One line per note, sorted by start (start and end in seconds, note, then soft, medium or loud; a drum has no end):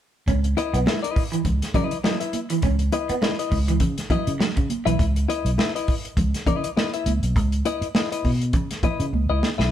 0.27 0.53 C#2 loud
0.27 0.39 C#4 medium
0.27 kick loud
0.27 closed hi-hat medium
0.27 muted conga soft
0.44 closed hi-hat soft
0.57 0.78 E4 medium
0.57 0.78 B4 medium
0.57 0.78 D#5 medium
0.57 muted clean electric guitar stroke soft
0.57 closed hi-hat medium
0.57 muted conga soft
0.73 0.85 B1 medium
0.73 0.82 B3 medium
0.73 closed hi-hat medium
0.86 0.98 G#3 medium
0.86 1.03 E4 medium
0.86 1.02 B4 medium
0.86 1.02 E5 medium
0.86 snare loud
0.86 high conga medium
1.03 1.23 E4 medium
1.03 1.22 B4 medium
1.03 1.22 D#5 medium
1.03 closed hi-hat medium
1.16 muted clean electric guitar stroke soft
1.16 kick medium
1.16 open hi-hat medium
1.32 1.41 E3 medium
1.32 closed hi-hat medium
1.45 1.59 C#2 medium
1.45 kick medium
1.45 closed hi-hat medium
1.45 muted conga soft
1.45 low conga medium
1.62 snare soft
1.62 closed hi-hat medium
1.74 1.89 C#3 medium
1.74 1.86 F#3 medium
1.74 1.96 E4 medium
1.74 1.97 B4 medium
1.74 1.97 D#5 medium
1.74 kick medium
1.74 closed hi-hat medium
1.74 muted conga medium
1.74 low conga medium
1.91 closed hi-hat soft
2.04 2.15 F#3 medium
2.04 2.20 E4 medium
2.04 2.19 B4 medium
2.04 2.20 D#5 medium
2.04 snare loud
2.04 high conga medium
2.20 2.39 E4 medium
2.20 2.39 B4 medium
2.20 2.39 E5 medium
2.20 muted clean electric guitar stroke soft
2.20 closed hi-hat medium
2.33 closed hi-hat medium
2.33 high conga medium
2.50 2.59 E3 medium
2.50 closed hi-hat medium
2.62 2.89 C#2 loud
2.62 2.74 C#4 medium
2.62 kick loud
2.62 closed hi-hat medium
2.62 muted conga soft
2.79 closed hi-hat soft
2.92 3.13 E4 medium
2.92 3.14 B4 medium
2.92 3.14 D#5 medium
2.92 muted clean electric guitar stroke soft
2.92 closed hi-hat medium
2.92 muted conga medium
3.09 3.18 B3 medium
3.09 muted fingered electric bass stroke medium
3.09 closed hi-hat soft
3.22 3.33 G#3 medium
3.22 3.39 E4 medium
3.22 3.38 B4 medium
3.22 3.38 D#5 medium
3.22 snare loud
3.22 high conga medium
3.39 3.58 E4 medium
3.39 3.58 B4 medium
3.39 3.57 D#5 medium
3.39 closed hi-hat medium
3.51 3.77 C#2 loud
3.51 muted clean electric guitar stroke soft
3.51 kick medium
3.51 open hi-hat medium
3.68 3.77 E3 medium
3.68 closed hi-hat medium
3.80 3.95 C#3 medium
3.80 kick medium
3.80 closed hi-hat medium
3.80 muted conga soft
3.80 low conga medium
3.98 snare soft
3.98 closed hi-hat medium
4.10 4.21 F#3 medium
4.10 4.32 E4 medium
4.10 4.32 B4 medium
4.10 4.32 D#5 medium
4.10 muted fingered electric bass stroke soft
4.10 kick medium
4.10 closed hi-hat medium
4.10 muted conga medium
4.10 low conga medium
4.27 4.39 C#3 medium
4.27 closed hi-hat medium
4.40 4.51 F#3 medium
4.40 snare loud
4.40 high conga medium
4.56 4.68 C#3 medium
4.56 muted clean electric guitar stroke soft
4.56 kick loud
4.56 closed hi-hat medium
4.70 closed hi-hat medium
4.70 high conga medium
4.85 4.98 B1 medium
4.85 4.94 E3 medium
4.85 5.05 E4 medium
4.85 5.05 B4 medium
4.85 5.04 E5 medium
4.85 closed hi-hat medium
4.99 5.25 C#2 loud
4.99 kick loud
4.99 closed hi-hat medium
4.99 muted conga soft
5.16 closed hi-hat soft
5.29 5.50 E4 medium
5.29 5.50 B4 medium
5.29 5.50 D#5 medium
5.29 closed hi-hat medium
5.29 muted conga soft
5.45 5.56 B1 medium
5.45 closed hi-hat medium
5.58 5.75 E4 medium
5.58 5.75 B4 medium
5.58 5.75 E5 medium
5.58 snare loud
5.58 high conga medium
5.75 5.94 E4 medium
5.75 5.94 B4 medium
5.75 5.94 D#5 medium
5.75 closed hi-hat medium
5.88 kick medium
5.88 open hi-hat medium
6.05 closed hi-hat medium
6.17 6.32 C#2 medium
6.17 kick medium
6.17 closed hi-hat medium
6.17 muted conga soft
6.17 low conga medium
6.34 snare soft
6.34 closed hi-hat medium
6.46 6.61 C#3 medium
6.46 6.68 E4 medium
6.46 6.69 B4 medium
6.46 6.69 D#5 medium
6.46 kick medium
6.46 closed hi-hat medium
6.46 muted conga medium
6.46 low conga medium
6.64 closed hi-hat medium
6.77 6.93 E4 medium
6.77 6.93 B4 medium
6.77 6.93 D#5 medium
6.77 snare loud
6.77 high conga medium
6.94 7.12 E4 medium
6.94 7.12 B4 medium
6.94 7.12 E5 medium
6.94 closed hi-hat soft
7.06 7.20 C#2 medium
7.06 closed hi-hat medium
7.06 high conga medium
7.23 7.36 B1 medium
7.23 closed hi-hat medium
7.36 7.61 C#2 loud
7.36 kick loud
7.36 closed hi-hat medium
7.36 muted conga soft
7.52 closed hi-hat soft
7.65 7.86 E4 medium
7.65 7.86 B4 medium
7.65 7.87 D#5 medium
7.65 closed hi-hat medium
7.65 muted conga medium
7.81 muted fingered electric bass stroke medium
7.81 closed hi-hat soft
7.95 8.11 E4 medium
7.95 8.11 B4 medium
7.95 8.11 D#5 medium
7.95 snare loud
7.95 high conga medium
8.12 8.30 E4 medium
8.12 8.30 B4 medium
8.12 8.30 D#5 medium
8.12 closed hi-hat medium
8.25 8.54 B2 medium
8.25 kick medium
8.25 open hi-hat medium
8.41 closed hi-hat soft
8.53 8.68 C#3 loud
8.53 kick medium
8.53 closed hi-hat medium
8.53 muted conga soft
8.53 low conga medium
8.71 snare soft
8.71 closed hi-hat medium
8.83 9.04 E4 medium
8.83 9.05 B4 medium
8.83 9.05 D#5 medium
8.83 muted fingered electric bass stroke soft
8.83 kick medium
8.83 closed hi-hat medium
8.83 muted conga medium
8.83 low conga medium
9.00 9.11 C#3 medium
9.00 closed hi-hat medium
9.13 9.27 C#2 loud
9.13 high conga medium
9.29 9.41 C#2 medium
9.29 9.49 E4 medium
9.29 9.48 B4 medium
9.29 9.48 D#5 medium
9.43 snare medium
9.43 high conga medium
9.58 9.71 B1 medium
9.58 9.71 E4 soft
9.58 9.71 B4 medium
9.58 9.71 E5 medium
9.58 snare medium